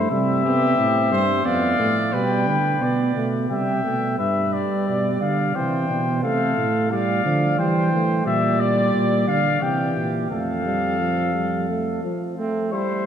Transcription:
0.10 0.76 C3 medium
0.10 0.43 G3 medium
0.10 0.44 E4 medium
0.10 1.42 E5 medium
0.45 0.79 B3 medium
0.45 1.10 G4 loud
0.78 1.13 A2 medium
0.78 1.13 C4 medium
1.11 1.44 G2 medium
1.11 1.45 G3 medium
1.11 1.47 C5 loud
1.45 1.78 F2 medium
1.45 1.80 B3 medium
1.45 2.14 D5 medium
1.45 1.97 F5 medium
1.79 2.15 A2 medium
1.79 2.12 A3 medium
2.13 2.49 B2 medium
2.13 2.57 G3 medium
2.13 2.47 B4 loud
2.13 3.20 G5 medium
2.47 2.81 D3 medium
2.47 2.84 B4 medium
2.81 3.15 B2 medium
2.81 3.13 B3 medium
2.81 3.26 D5 medium
3.15 3.49 B2 medium
3.15 3.49 A3 medium
3.50 3.83 C3 medium
3.50 3.83 G3 medium
3.50 4.15 E5 medium
3.50 4.15 G5 medium
3.84 4.18 B2 medium
3.84 4.18 A3 medium
4.18 4.70 G2 medium
4.18 5.51 G3 medium
4.18 4.83 B4 medium
4.18 4.54 E5 medium
4.53 5.20 D5 medium
4.87 5.20 B2 medium
4.87 5.57 D5 medium
5.20 5.54 D3 medium
5.20 5.57 F5 medium
5.55 5.88 C3 medium
5.55 6.22 E3 medium
5.55 6.23 C5 medium
5.55 6.23 G5 medium
5.90 6.25 B2 medium
6.23 6.57 C3 medium
6.23 6.90 A3 medium
6.23 6.93 A4 medium
6.23 6.90 F5 medium
6.57 7.23 A2 medium
6.90 7.24 G3 medium
6.90 7.60 D5 medium
6.90 7.57 F5 medium
7.24 7.60 D3 medium
7.24 7.57 F3 medium
7.58 8.25 E3 medium
7.58 7.91 G3 medium
7.58 8.25 C5 medium
7.58 8.25 G5 medium
7.92 8.27 A3 medium
8.26 8.92 A#2 medium
8.26 9.44 G3 medium
8.26 9.63 D5 medium
8.26 8.62 E5 medium
8.60 9.27 D5 medium
8.94 9.27 A#2 medium
9.27 9.61 D3 medium
9.27 9.64 F5 medium
9.61 9.95 C3 medium
9.61 10.29 E3 medium
9.61 10.30 G4 medium
9.61 10.14 G5 medium
9.96 10.30 A#2 medium
10.30 12.00 F2 medium
10.30 10.64 A3 medium
10.30 12.01 A4 medium
10.30 12.01 F5 medium
10.65 10.99 G3 medium
10.99 11.34 F3 medium
11.34 11.68 G3 medium
11.69 12.03 A3 medium
12.03 12.37 F3 medium
12.38 12.74 A3 medium
12.38 12.70 C4 medium
12.72 13.06 G3 medium
12.72 13.06 E4 medium
12.72 13.06 C5 medium

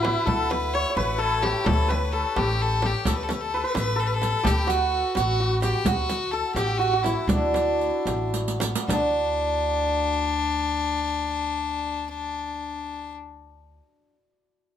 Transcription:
0.00 0.13 A1 medium
0.00 0.52 D4 medium
0.00 0.28 E4 medium
0.00 3.27 E4 medium
0.00 1.48 F#4 medium
0.00 0.25 A4 medium
0.00 0.96 B4 medium
0.05 frame drum medium
0.26 0.83 D2 medium
0.26 1.18 A4 medium
0.26 0.52 A4 medium
0.26 frame drum medium
0.50 0.75 B4 medium
0.50 frame drum medium
0.74 0.96 C#5 medium
0.74 0.89 C#5 loud
0.90 3.45 C#5 medium
0.97 1.53 A1 medium
0.97 1.21 B4 medium
0.97 1.88 B4 medium
0.97 frame drum medium
1.18 1.64 A4 medium
1.18 1.44 A4 medium
1.42 2.36 G4 medium
1.42 1.67 G4 medium
1.42 frame drum medium
1.64 2.23 D2 loud
1.64 2.13 A4 medium
1.64 1.91 A4 medium
1.64 frame drum medium
1.88 3.54 B4 medium
1.88 2.14 B4 medium
1.88 frame drum medium
2.12 2.39 A4 medium
2.12 3.06 A4 medium
2.36 2.92 A1 medium
2.36 2.82 G4 medium
2.36 2.63 G4 medium
2.36 frame drum medium
2.62 2.87 A4 medium
2.82 4.43 G4 medium
2.82 3.10 G4 medium
2.82 frame drum medium
3.05 3.62 D2 medium
3.05 3.57 A4 medium
3.05 3.17 A4 medium
3.05 riq medium
3.05 frame drum medium
3.16 3.25 B4 medium
3.23 3.33 A4 medium
3.29 3.42 B4 medium
3.29 riq soft
3.29 frame drum medium
3.40 3.65 A4 medium
3.54 3.96 A4 medium
3.54 3.63 B4 medium
3.64 3.74 B4 medium
3.64 3.76 B4 medium
3.74 4.32 A1 medium
3.74 6.47 B4 medium
3.74 4.01 B4 medium
3.74 riq soft
3.74 frame drum medium
3.96 6.33 A4 medium
3.96 4.09 A4 medium
3.96 riq soft
4.07 4.16 B4 medium
4.14 4.48 A4 medium
4.22 riq soft
4.22 frame drum medium
4.43 5.02 D2 medium
4.43 4.73 G4 medium
4.43 4.72 G4 medium
4.43 riq medium
4.43 frame drum medium
4.67 5.16 F#4 medium
4.67 riq soft
4.67 frame drum medium
5.15 5.72 A1 medium
5.15 5.40 F#4 medium
5.15 5.59 F#4 medium
5.15 riq medium
5.15 frame drum medium
5.40 5.69 F#4 medium
5.62 5.89 G4 medium
5.62 5.93 G4 medium
5.62 riq soft
5.62 frame drum medium
5.85 6.41 D2 medium
5.85 6.63 F#4 medium
5.85 6.33 F#4 medium
5.85 riq medium
5.85 frame drum medium
6.10 riq soft
6.10 frame drum medium
6.31 6.55 A4 medium
6.31 9.26 A4 medium
6.55 7.13 A1 medium
6.55 6.79 G4 medium
6.55 6.85 G4 medium
6.55 riq soft
6.55 frame drum medium
6.78 7.04 F#4 medium
6.78 6.93 F#4 medium
6.78 riq soft
6.93 10.19 F#4 medium
7.03 7.30 E4 medium
7.03 10.52 E4 medium
7.03 riq soft
7.03 frame drum medium
7.27 7.90 D2 loud
7.27 8.32 D4 medium
7.27 8.88 D4 medium
7.27 riq medium
7.27 frame drum medium
7.54 riq soft
7.54 frame drum medium
7.81 riq soft
8.06 8.72 A1 medium
8.06 riq soft
8.06 frame drum medium
8.34 riq medium
8.48 riq medium
8.60 riq medium
8.60 frame drum medium
8.75 riq medium
8.88 13.79 D2 medium
8.88 13.79 D4 medium
8.88 13.13 D4 medium
8.88 riq medium
8.88 frame drum medium

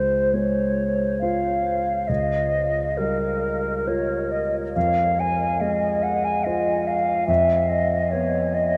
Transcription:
0.00 2.05 C#2 soft
0.00 0.35 C5 soft
0.33 1.74 G#3 soft
0.33 1.20 C#5 soft
1.21 2.05 F4 soft
1.21 2.06 C5 soft
1.21 2.09 F5 soft
2.08 4.72 C#2 soft
2.08 2.99 D#5 soft
2.97 4.41 G3 soft
2.97 3.89 A#4 soft
3.87 4.71 F4 soft
3.87 4.72 A#4 soft
3.87 4.33 C#5 soft
4.31 4.55 D#5 soft
4.75 7.25 F2 soft
4.75 5.21 F5 soft
5.20 5.62 G#5 soft
5.61 6.95 G#3 soft
5.61 6.04 D#5 soft
6.03 6.26 F#5 soft
6.24 6.45 G#5 soft
6.44 7.25 F4 soft
6.44 7.25 C5 soft
6.44 6.89 D#5 soft
6.87 7.27 F5 medium
7.27 8.77 F2 soft
7.27 7.71 E5 medium
7.69 8.13 D#5 soft
8.11 8.77 B3 soft
8.11 8.56 C#5 soft
8.55 8.77 D#5 soft

